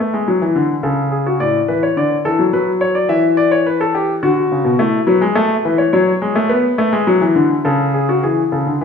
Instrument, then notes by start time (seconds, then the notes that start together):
grand piano
Already playing: B4
0.00 A3
0.14 G#3
0.28 F#3
0.42 E3
0.56 D3
0.83 C#3 A4
1.11 G#4
1.27 F#4
1.40 A2 D5
1.68 E3 B4
1.83 C#5
1.97 D3 D5
2.25 E3 A4
2.39 F#3
2.53 F#3 B4
2.81 C#5
2.95 D5
3.09 E3 E5
3.37 D5
3.52 C#5
3.66 B4
3.81 A4
3.95 G4
4.23 D3 F#4
4.52 C#3
4.65 B2
4.79 A3 E4
5.07 F#3 B4
5.21 G#3
5.35 A3 A4
5.65 E3 B4
5.78 C#5
5.93 F#3 C#5
6.22 G#3
6.36 A3
6.49 B3 B4
6.78 A3
6.93 G#3
7.07 F#3
7.21 E3
7.35 D3
7.65 C#3 A4
7.94 G#4
8.09 F#4
8.23 E3 G#4
8.52 C#3 A4
8.66 D3
8.81 E3 B4